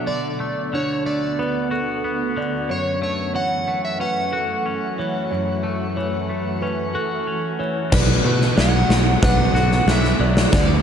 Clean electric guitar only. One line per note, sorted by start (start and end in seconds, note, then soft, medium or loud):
0.00 0.40 A3 soft
0.00 1.71 F#4 soft
0.07 0.72 D3 soft
0.40 1.06 A3 soft
0.73 2.35 D3 soft
1.06 3.01 A3 soft
1.39 2.03 B3 soft
1.71 3.38 F#4 soft
2.04 2.70 B3 soft
2.37 2.69 D3 soft
2.69 4.33 F#2 soft
3.02 3.67 A3 soft
3.35 4.98 E3 soft
3.68 5.63 A3 soft
4.00 4.65 C#4 soft
4.33 5.96 F#4 soft
4.66 6.29 C#4 soft
4.99 5.96 E3 soft
5.32 6.95 F#2 soft
5.64 6.28 A3 soft
5.97 7.59 E3 soft
6.29 7.93 A3 soft
6.62 7.26 C#4 soft
6.95 7.93 F#4 soft
7.27 7.92 C#4 soft
7.60 7.92 E3 soft
7.92 9.55 B2 medium
8.24 8.89 A3 medium
8.57 10.20 F#3 medium
8.89 10.82 A3 medium
9.22 9.86 D4 medium
9.55 10.82 F#4 medium
9.87 10.53 D4 medium
10.20 10.52 F#3 medium
10.52 10.82 D3 medium